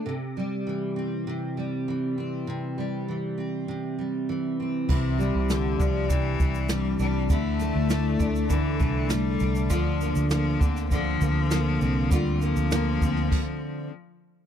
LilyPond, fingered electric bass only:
\new Staff \with { instrumentName = "Fingered electric bass" } { \clef bass \time 4/4 \key c \mixolydian \tempo 4 = 100 r1 | r1 | c,8. c,8. c,4 c,4 c,8 | d,8. d,8. d,4 c,4 c,8 |
d,8. d,8. d,4 d,4 c,8 | d,8. d,8. d,8 r2 | }